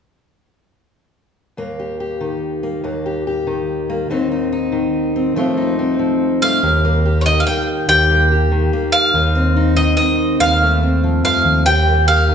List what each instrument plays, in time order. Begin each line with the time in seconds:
1.57 steel-string acoustic guitar D#2 A#3
1.80 steel-string acoustic guitar G4
2.00 steel-string acoustic guitar G4
2.21 steel-string acoustic guitar D#3
2.63 steel-string acoustic guitar A#3
2.84 steel-string acoustic guitar D#2 A#3
3.06 steel-string acoustic guitar G4
3.27 steel-string acoustic guitar G4
3.47 steel-string acoustic guitar D#3
3.90 steel-string acoustic guitar A#3
4.10 steel-string acoustic guitar D#2 D#3 C4 D#4
4.32 steel-string acoustic guitar D#4
4.52 steel-string acoustic guitar D#4
4.72 steel-string acoustic guitar D#3
5.16 steel-string acoustic guitar C4
5.36 steel-string acoustic guitar D#2 F3 A3 C4 F4
5.57 steel-string acoustic guitar D#4
5.79 steel-string acoustic guitar C4
5.99 steel-string acoustic guitar F3
6.42 steel-string acoustic guitar A3, mandolin F5
6.63 steel-string acoustic guitar D#2 G4, picked electric bass D#2
6.85 steel-string acoustic guitar A#3
7.06 steel-string acoustic guitar G4
7.21 mandolin C#5
7.26 steel-string acoustic guitar D#3, mandolin D#5
7.40 mandolin F5
7.47 steel-string acoustic guitar A#3, mandolin G5
7.88 picked electric bass D#2, steel-string acoustic guitar D#2 G4, mandolin G5
8.10 steel-string acoustic guitar A#3
8.32 steel-string acoustic guitar G4
8.51 steel-string acoustic guitar D#3
8.73 steel-string acoustic guitar A#3
8.92 mandolin F5
9.14 steel-string acoustic guitar D#2 D#4, picked electric bass D#2
9.35 steel-string acoustic guitar C4
9.56 steel-string acoustic guitar D#4
9.77 steel-string acoustic guitar D#3, mandolin D#5
9.97 steel-string acoustic guitar C4, mandolin D#5
10.40 picked electric bass D#2, steel-string acoustic guitar D#2 C4, mandolin F5
10.62 steel-string acoustic guitar A3
10.83 steel-string acoustic guitar C4
11.04 steel-string acoustic guitar F3
11.23 picked electric bass F2, steel-string acoustic guitar A3, mandolin F5
11.45 picked electric bass D#2
11.66 picked electric bass D#2, steel-string acoustic guitar D#2 G4, mandolin G5
11.88 steel-string acoustic guitar A#3
12.08 steel-string acoustic guitar G4, mandolin F5
12.28 steel-string acoustic guitar D#3